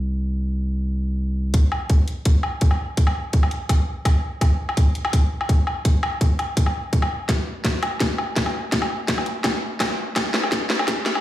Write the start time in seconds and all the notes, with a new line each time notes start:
Already playing: C2
1.54 kick, closed hi-hat
1.72 low woodblock
1.90 kick, closed hi-hat
2.08 closed hi-hat
2.25 kick, closed hi-hat
2.43 low woodblock
2.61 kick, closed hi-hat
2.71 low woodblock
2.97 kick, closed hi-hat
3.07 low woodblock
3.33 kick, closed hi-hat
3.43 low woodblock
3.51 closed hi-hat
3.69 kick, closed hi-hat, low woodblock
4.05 kick, closed hi-hat, low woodblock
4.41 kick, closed hi-hat, low woodblock
4.69 low woodblock
4.77 kick, closed hi-hat
4.95 closed hi-hat
5.05 low woodblock
5.13 kick, closed hi-hat
5.41 low woodblock
5.49 kick, closed hi-hat
5.67 low woodblock
5.85 kick, closed hi-hat
6.03 low woodblock
6.21 kick, closed hi-hat
6.39 closed hi-hat, low woodblock
6.57 kick, closed hi-hat
6.66 low woodblock
6.93 kick, closed hi-hat
7.02 low woodblock
7.29 kick, snare, closed hi-hat
7.65 kick, snare, closed hi-hat
7.83 closed hi-hat, low woodblock
8.00 kick, snare, closed hi-hat
8.18 low woodblock
8.36 kick, snare, closed hi-hat
8.46 low woodblock
8.72 kick, snare, closed hi-hat
8.82 low woodblock
9.08 kick, snare, closed hi-hat
9.18 low woodblock
9.26 closed hi-hat
9.44 kick, snare, closed hi-hat, low woodblock
9.80 kick, snare, closed hi-hat, low woodblock
10.16 kick, snare, closed hi-hat, low woodblock
10.34 snare
10.44 low woodblock
10.52 kick, snare, closed hi-hat
10.70 snare, closed hi-hat
10.79 low woodblock
10.88 kick, snare, closed hi-hat
11.06 snare
11.15 low woodblock